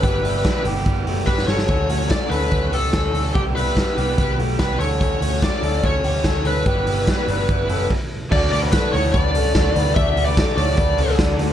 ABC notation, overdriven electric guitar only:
X:1
M:4/4
L:1/8
Q:1/4=145
K:D
V:1 name="Overdriven electric guitar"
[G,,D,E,G,B,G] [E,G,B,G] [G,,D,E,G,B,G] [E,G,B,G] [E,G,B,G] [E,G,B,G] [G,,D,E,G,B,G]2 | [D,F,A,CF] [A,CF] [D,F,A,CF] [A,CF] [F,A,CF] [A,CF] [D,F,A,CF]2 | [=C,E,G,B,G] [G,B,G] [C,E,G,B,G] [G,B,G] [E,G,B,G] [G,B,G] [C,E,G,B,G] [D,F,A,^CF]- | [D,F,A,CF] [A,CF] [D,F,A,CF] [A,CF] [F,A,CF] [A,CF] [D,F,A,CF]2 |
[G,,D,E,G,B,E] [E,G,B,E] [G,,D,E,G,B,E] [E,G,B,E] [E,G,B,E] [E,G,B,E] z2 | [D,A,DF] [A,DF] [D,A,DF] [A,DF]2 [A,DF] [D,A,DF]2 | [D,A,DF] [A,DF] [D,A,DF] [A,DF]2 [A,DF] [D,A,DF]2 |]